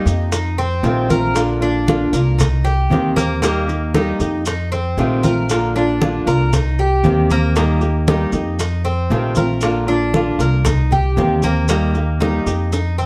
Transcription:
Already playing: D#4
0.06 F2 A#3 D#4 G4, high bongo, high conga, maracas
0.32 D#4, muted nylon-string guitar stroke, high bongo, high conga, maracas
0.58 C4, high bongo, high conga, maracas
0.83 A#1 C3 D#3 A3 C4 F4, high bongo, low bongo, high conga, maracas
1.09 A3 C4 F4 A#4, high conga, maracas
1.34 D3 A#3 D4 F4, high bongo, high conga, maracas
1.61 A#3 D4 F4, high bongo, high conga, maracas
1.86 D3 A#3 D4 F4, high bongo, high conga, maracas
2.13 C2 A#3 D4 F4 A#4, high bongo, maracas
2.38 D#4, muted nylon-string guitar stroke, high bongo, high conga, low conga, maracas
2.64 G4, high bongo, high conga, maracas
2.90 D#2 C3 D#3 A#3 C4 G4, high bongo, low bongo, high conga, maracas
3.16 A#3 C4 G4, high conga, maracas
3.42 D#3 G3 A#3 D#4 G4, high bongo, maracas
3.67 A#3 D#4 G4, high bongo, high conga, maracas
3.94 D#3 G3 A#3 D#4 G4, high bongo, high conga, maracas
4.20 F2 A#3 D#4 G4, high bongo, high conga, maracas
4.46 D#4, muted nylon-string guitar stroke, high bongo, high conga, maracas
4.72 C4, high bongo, high conga, maracas
4.97 A#1 C3 D#3 A3 C4 F4, high bongo, low bongo, high conga, maracas
5.23 A3 C4 F4 A#4, high conga, maracas
5.49 D3 A#3 D4 F4, high bongo, high conga, maracas
5.76 A#3 D4 F4, high bongo, high conga, maracas
6.01 D3 A#3 D4 F4, high bongo, high conga, maracas
6.26 C2 A#3 D4 F4 A#4, high bongo, maracas
6.52 D#4, muted nylon-string guitar stroke, high bongo, high conga, low conga, maracas
6.78 G4, high bongo, high conga, maracas
7.03 D#2 C3 D#3 A#3 C4 G4, high bongo, low bongo, high conga, maracas
7.29 A#3 C4 G4, high conga, maracas
7.56 D#3 G3 A#3 D#4 G4, high bongo, high conga, maracas
7.81 A#3 D#4 G4, high bongo, high conga, maracas
8.07 D#3 G3 A#3 D#4 G4, high bongo, high conga, maracas
8.32 F2 A#3 D#4 G4, high bongo, high conga, maracas
8.59 D#4, muted nylon-string guitar stroke, high bongo, high conga, maracas
8.85 C4, high bongo, high conga, maracas
9.10 A#1 C3 D#3 A3 C4 F4, high bongo, low bongo, high conga, maracas
9.35 A3 C4 F4 A#4, high conga, maracas
9.61 D3 A#3 D4 F4, high bongo, high conga, maracas
9.87 A#3 D4 F4, high bongo, high conga, maracas
10.14 D3 A#3 D4 F4, high bongo, high conga, maracas
10.39 C2 A#3 D4 F4 A#4, high bongo, maracas
10.65 D#4, muted nylon-string guitar stroke, high bongo, high conga, low conga, maracas
10.91 G4, high bongo, high conga, low conga, maracas
11.16 D#2 C3 D#3 A#3 C4 G4, high bongo, low bongo, high conga, maracas
11.42 A#3 C4 G4, high conga, maracas
11.68 D#3 G3 A#3 D#4 G4, high bongo, high conga, maracas
11.94 A#3 D#4 G4, high bongo, high conga, maracas
12.20 D#3 G3 A#3 D#4 G4, high bongo, high conga, maracas
12.46 F2 A#3 D#4 G4, high bongo, high conga, maracas
12.72 D#4, muted nylon-string guitar stroke, high bongo, high conga, maracas
12.98 C4, high conga, maracas

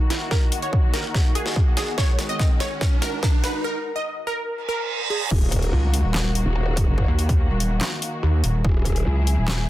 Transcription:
Already playing: D#3 A#3 D#4 F#4 A#4 F#5, riser
0.10 E4, snare, closed hi-hat
0.31 A#4, kick, snare
0.52 closed hi-hat
0.62 C#5, closed hi-hat
0.73 kick
0.94 A#4, snare, open hi-hat
1.15 kick, snare
1.35 G#4, closed hi-hat
1.46 snare
1.56 kick
1.77 G#4, snare, closed hi-hat
1.98 G#3 C#5, kick, snare
2.19 snare, closed hi-hat
2.29 D#5, closed hi-hat
2.39 kick, snare
2.60 C#5, snare, open hi-hat
2.81 kick, snare
3.02 A#4, snare, closed hi-hat
3.23 kick, snare
3.44 B4, snare, closed hi-hat
3.64 A#4
3.96 D#5
4.27 A#4
4.48 reverse cymbal
4.69 A#4
5.10 G#4
5.31 D#1 D#3 A#3 F#4, kick, crash, impact
5.52 kick, closed hi-hat
5.62 closed hi-hat
5.73 C#2
5.94 closed hi-hat
6.04 D#1
6.14 snare, clap
6.35 closed hi-hat
6.46 D#1
6.77 kick, open hi-hat
6.87 F#1
6.98 kick
7.08 D#2
7.19 closed hi-hat
7.29 kick, closed hi-hat
7.50 D#1
7.60 closed hi-hat
7.81 snare, clap
8.02 closed hi-hat
8.23 D#2
8.44 D#1, open hi-hat
8.64 D#1 F#3 E4 G#4, kick
8.85 kick, closed hi-hat
8.96 closed hi-hat
9.06 C#2
9.27 closed hi-hat
9.38 D#1
9.48 snare, clap

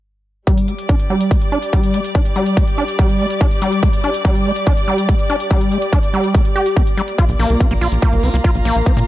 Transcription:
0.47 G3, kick, closed hi-hat
0.58 closed hi-hat
0.62 D6
0.68 G#3, closed hi-hat
0.75 G4, closed hi-hat
0.82 D5
0.89 D4, kick, closed hi-hat
1.00 closed hi-hat
1.10 G3
1.21 closed hi-hat
1.31 G#3, kick, closed hi-hat
1.41 closed hi-hat
1.52 D4
1.62 closed hi-hat
1.73 G3, kick, closed hi-hat
1.83 closed hi-hat
1.94 G#3, closed hi-hat
2.04 closed hi-hat
2.15 D4, kick, closed hi-hat
2.25 closed hi-hat
2.36 G3, closed hi-hat
2.46 closed hi-hat
2.57 G#3, kick, closed hi-hat
2.67 closed hi-hat
2.78 D4
2.88 closed hi-hat
2.99 G3, kick, closed hi-hat
3.09 closed hi-hat
3.20 G#3
3.30 closed hi-hat
3.41 D4, kick, closed hi-hat
3.51 closed hi-hat
3.62 G3, closed hi-hat
3.72 closed hi-hat
3.83 G#3, kick, closed hi-hat
3.93 closed hi-hat
4.04 D4, closed hi-hat
4.14 closed hi-hat
4.25 G3, kick, closed hi-hat
4.35 closed hi-hat
4.46 G#3
4.56 closed hi-hat
4.67 D4, kick, closed hi-hat
4.77 closed hi-hat
4.88 G3
4.98 closed hi-hat
5.09 G#3, kick, closed hi-hat
5.19 closed hi-hat
5.30 D4, closed hi-hat
5.40 closed hi-hat
5.51 G3, kick, closed hi-hat
5.61 closed hi-hat
5.72 G#3, closed hi-hat
5.82 closed hi-hat
5.93 D4, kick, closed hi-hat
6.03 closed hi-hat
6.14 G3
6.24 closed hi-hat
6.35 G#3, kick, closed hi-hat
6.45 closed hi-hat
6.56 G4
6.66 closed hi-hat
6.76 G#3, kick, closed hi-hat
6.87 closed hi-hat
6.97 G3, closed hi-hat
7.08 closed hi-hat
7.18 A#3 F4, kick, closed hi-hat
7.29 A#1, closed hi-hat
7.39 A#1 A#3 F4, open hi-hat
7.45 A#5
7.50 C2, closed hi-hat
7.60 C4, kick, closed hi-hat
7.71 A#1 A#3, closed hi-hat
7.81 A#1 F4 F5, open hi-hat
7.92 A#1, closed hi-hat
8.02 A#3, kick, closed hi-hat
8.13 C2, closed hi-hat
8.23 C2 C4, open hi-hat
8.34 C2 A#3, closed hi-hat
8.44 F4, kick, closed hi-hat
8.55 A#1, closed hi-hat
8.65 A#1 A#3, open hi-hat
8.76 A#1, closed hi-hat
8.86 C4, kick, closed hi-hat
8.97 A#2 A#3, closed hi-hat

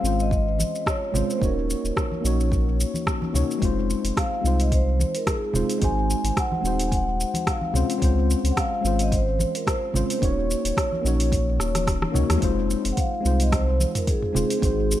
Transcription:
Already playing: C4 C#4 F4 C5 F5
0.00 G#1 G#3 C4 C#4
0.05 F4 C5, shaker
0.20 D#5, shaker
0.31 kick, shaker
0.59 high conga, shaker
0.75 shaker
0.86 C#5, kick, cross-stick, shaker
1.12 G#1 G#3 C4 C#4 F4 C5, low conga, shaker
1.30 C5, shaker
1.38 D#1 A#3 C#4 D#4, kick
1.43 F#4 A#4 C#5, shaker
1.70 shaker
1.84 D#1, shaker
1.97 kick, cross-stick, shaker
2.12 high conga
2.21 A#1 A#3 C#4 D#4
2.25 F#4 C#5, shaker
2.40 shaker
2.52 kick, shaker
2.80 shaker
2.94 high conga, shaker
3.07 kick, cross-stick, shaker
3.22 high conga
3.33 C#2 A#3 C#4 D#4 F#4 C#5, low conga, shaker
3.51 shaker
3.58 F1 G#3 C4 D#4, kick, open hi-hat
3.63 F4 C5, shaker
3.90 shaker
4.04 F1, open hi-hat, shaker
4.17 F5, kick, cross-stick, open hi-hat, shaker
4.41 C2 G#3 C4 D#4
4.46 F4 C5, shaker
4.60 D#5, open hi-hat, shaker
4.72 C5, kick, open hi-hat, shaker
5.00 high conga, shaker
5.15 A#4, open hi-hat, shaker
5.27 G#4, kick, cross-stick, open hi-hat, shaker
5.53 D#1 G#3 C4 D#4 F4 C5, low conga, shaker
5.69 open hi-hat, shaker
5.78 G#1 G#3 C4 D#4, kick, open hi-hat
5.82 F#4 C5 G#5, shaker
6.10 shaker
6.24 G#1, open hi-hat, shaker
6.37 F#5, kick, cross-stick, open hi-hat, shaker
6.52 high conga
6.61 D#1 G#3 C4 D#4
6.65 F#4 C5, shaker
6.80 open hi-hat, shaker
6.88 G#5, kick
6.92 F#5, open hi-hat, shaker
7.20 shaker
7.34 open hi-hat, high conga, shaker
7.47 F5, kick, cross-stick, open hi-hat, shaker
7.61 high conga
7.73 C#2 G#3 C4 C#4 F4 C5, low conga, shaker
7.90 open hi-hat, shaker
7.98 C#2 G#3 C4 C#4, kick, open hi-hat
8.03 F4 C5, shaker
8.30 shaker
8.44 C#2, open hi-hat, shaker
8.52 F#5
8.57 F5, kick, cross-stick, open hi-hat, shaker
8.81 G#1 G#3 C4 C#4
8.85 F4 C5, shaker
8.99 D#5, open hi-hat, shaker
9.12 C5, kick, open hi-hat, shaker
9.39 high conga, shaker
9.55 A#4, open hi-hat, shaker
9.67 C5, kick, cross-stick, open hi-hat, shaker
9.93 G#1 G#3 C4 C#4 F4 C5, low conga, shaker
10.10 open hi-hat, shaker
10.19 D#1 A#3 C#4 D#4, kick
10.23 F#4 C#5, open hi-hat, shaker
10.51 shaker
10.65 D#1, open hi-hat, shaker
10.77 kick, cross-stick, open hi-hat, shaker
10.92 high conga
11.02 A#1 A#3 C#4 D#4
11.06 F#4 C#5, shaker
11.20 open hi-hat, shaker
11.32 kick, open hi-hat, shaker
11.59 D#1, cross-stick, shaker
11.75 cross-stick, open hi-hat, high conga, shaker
11.87 kick, cross-stick, open hi-hat, shaker
12.02 cross-stick, high conga
12.12 C#2 A#3 C#4 D#4 F#4 C#5, low conga, shaker
12.30 D#2, cross-stick, open hi-hat, high conga, shaker
12.37 G#3 C4 D#4
12.42 F1 F4 C5, kick, open hi-hat, shaker
12.71 shaker
12.85 F1, open hi-hat, shaker
12.92 F#5
12.97 F5, kick, open hi-hat, shaker
13.21 G#3 C4 D#4
13.25 C2 F4 C5, shaker
13.40 D#5, open hi-hat, shaker
13.52 C5, kick, cross-stick, open hi-hat, shaker
13.80 high conga, shaker
13.95 A#4, mid tom, open hi-hat, shaker
14.07 G#4, kick, open hi-hat, shaker
14.22 mid tom
14.33 D#1 G#3 C4 D#4 F4 G#4 C5, low conga, shaker
14.50 open hi-hat, shaker
14.59 G#1 G#3 C4 D#4, kick
14.63 F#4 C5, open hi-hat, shaker
14.91 shaker

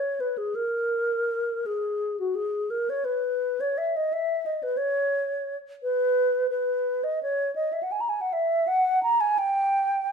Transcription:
Already playing: C#5
0.20 B4
0.38 G#4
0.55 A#4
1.66 G#4
2.20 F#4
2.35 G#4
2.70 A#4
2.90 C#5
3.05 B4
3.60 C#5
3.78 E5
3.96 D#5
4.13 E5
4.46 D#5
4.63 B4
4.77 C#5
5.83 B4
6.50 B4
7.04 D#5
7.23 C#5
7.56 D#5
7.73 E5
7.83 F#5
7.92 G#5
8.01 A#5
8.09 G#5
8.21 F#5
8.33 E5
8.67 F#5
9.03 A#5
9.20 G#5
9.38 G5

